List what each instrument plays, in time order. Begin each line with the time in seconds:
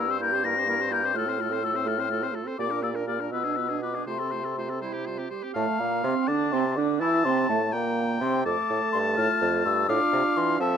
Already playing: bassoon G2, flute E6
0.00 oboe A#4
0.08 french horn C4, clarinet G4, oboe C5
0.20 french horn A#3, clarinet E4, oboe A#4, flute G6
0.32 french horn C4, clarinet G4, oboe C5
0.43 french horn A#3, clarinet E4, oboe A#4, flute A#6
0.56 french horn C4, clarinet G4, oboe C5
0.67 french horn A#3, clarinet E4, oboe A#4
0.79 french horn C4, clarinet G4, oboe C5
0.91 french horn A#3, clarinet E4, oboe A#4, flute G6
1.03 french horn C4, clarinet G4, oboe C5
1.14 bassoon A2, french horn A3, clarinet F4, oboe A4, flute F6
1.26 french horn C4, clarinet A4, oboe C5
1.38 french horn A3, clarinet F4, oboe A4
1.50 french horn C4, clarinet A4, oboe C5
1.62 french horn A3, clarinet F4, oboe A4, flute E6
1.74 french horn C4, clarinet A4, oboe C5
1.86 french horn A3, clarinet F4, oboe A4, flute F6
1.98 french horn C4, clarinet A4, oboe C5
2.09 french horn A3, clarinet F4, oboe A4
2.22 french horn C4, clarinet A4, oboe C5
2.34 french horn A3, clarinet F4, oboe A4
2.46 french horn C4, clarinet A4, oboe C5
2.58 bassoon A#2, french horn A#3, clarinet G4, oboe D5, flute D6
2.70 french horn D4, clarinet A#4, oboe A#4
2.82 french horn A#3, clarinet G4, oboe D5, flute E6
2.94 french horn D4, clarinet A#4, oboe A#4
3.07 french horn A#3, clarinet G4, oboe D5, flute F6
3.20 french horn D4, clarinet A#4, oboe A#4
3.32 bassoon B2, french horn B3, clarinet F4, oboe B4, flute E6
3.44 clarinet D4, french horn D4, oboe G#4
3.57 french horn B3, clarinet F4, oboe B4
3.69 french horn D4, clarinet D4, oboe G#4
3.82 french horn B3, clarinet F4, oboe B4, flute D6
3.94 french horn D4, clarinet D4, oboe G#4
4.07 bassoon C3, french horn A3, clarinet F4, oboe C5, flute C6
4.19 french horn C4, clarinet A4, oboe A4
4.31 french horn A3, clarinet F4, oboe C5
4.44 french horn C4, clarinet A4, oboe A4
4.57 french horn A3, clarinet F4, oboe C5
4.69 french horn C4, clarinet A4, oboe A4
4.81 french horn G3, clarinet E4, oboe C5
4.93 french horn C4, oboe G4
5.06 french horn G3, clarinet F4, oboe C5
5.18 french horn C4, oboe G4
5.30 french horn G3, clarinet G4, oboe C5
5.43 french horn C4, oboe G4
5.54 bassoon A2, clarinet A3, french horn A3, oboe F5, flute A5
5.79 bassoon A#2, french horn A#3, clarinet A#3, flute A#5
6.04 bassoon C3, french horn C4, clarinet C4, flute C6
6.28 bassoon D3, french horn D4, clarinet D4, oboe A5, flute D6
6.52 bassoon C3, french horn C4, clarinet C4, flute C6
6.76 bassoon D3, clarinet D4, french horn D4, flute D6
7.01 bassoon E3, clarinet E4, french horn E4, oboe A5, flute E6
7.25 bassoon C3, french horn C4, clarinet C4, flute C6
7.49 bassoon A2, clarinet A3, french horn A3, flute A5
7.73 bassoon A#2, clarinet A#3, french horn A#3, oboe G5, flute A#5
8.21 bassoon C3, clarinet C4, french horn C4, flute C6
8.45 bassoon F2, french horn A3, clarinet A4, oboe A5, flute D6
8.70 bassoon A2
8.92 bassoon G2, flute C6
9.17 bassoon A2, clarinet F4, flute F6
9.42 bassoon F2
9.65 bassoon G2, flute E6
9.88 bassoon A2, french horn D4, clarinet F4, oboe F5, flute D6
10.13 bassoon C3
10.37 bassoon E3, flute C6
10.60 bassoon F3, french horn C4, clarinet A4, oboe E5, flute A5